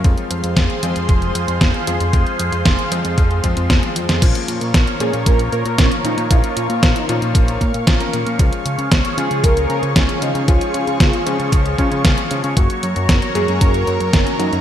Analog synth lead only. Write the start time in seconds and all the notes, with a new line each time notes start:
5.01 G#4
5.27 A#4
5.53 A#4
5.78 C#4
6.05 D#4
6.31 F4
7.01 D#4
9.18 G#4
9.44 A#4
9.70 A#4
9.96 C#4
10.22 D#4
10.48 F4
13.35 G#4
13.61 A#4
13.87 A#4
14.13 C#4
14.39 D#4